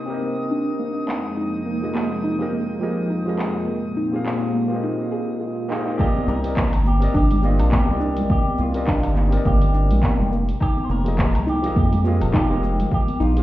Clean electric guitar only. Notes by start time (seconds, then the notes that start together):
6.00 G4
6.29 A#4
6.87 G4
7.17 G4
7.45 F4
7.73 G4
8.31 G4
8.61 F4
9.17 D#4
9.47 G4
10.62 G4
10.85 C5
10.91 A#4
11.49 G4
11.78 G4
12.07 F4
12.37 G4
12.94 G4
13.22 F4